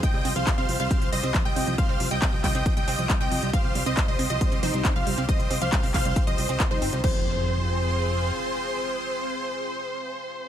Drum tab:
CC |----------------|----------------|----------------|----------------|
HH |x-oxx-oxxxoxx-ox|x-o-x-oxxxoxx-ox|x-oxx-oxxxoxx-ox|xxoxxooxxxoxx-ox|
CP |----x-------x---|----x-x-----x---|----x-------x---|----x-x-----x---|
BD |o---o---o---o---|o---o-o-o---o---|o---o---o---o---|o---o-o-o---o---|

CC |x---------------|----------------|
HH |----------------|----------------|
CP |----------------|----------------|
BD |o---------------|----------------|